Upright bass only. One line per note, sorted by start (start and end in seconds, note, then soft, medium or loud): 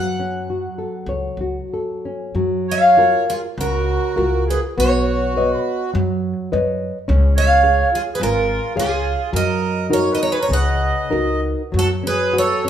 0.00 0.66 F#2 medium
1.06 1.27 C#2 medium
1.37 1.58 C#2 medium
2.35 3.14 F#2 medium
3.58 3.97 C#2 medium
4.17 4.56 C#2 medium
4.78 5.54 B1 medium
5.95 6.32 F#2 loud
6.53 6.90 F#2 loud
7.09 7.82 C#2 loud
8.21 8.58 G#1 loud
8.77 9.14 C#2 medium
9.33 10.09 F#2 loud
10.50 10.91 C#2 medium
11.12 11.53 C#2 medium
11.74 12.53 F#2 medium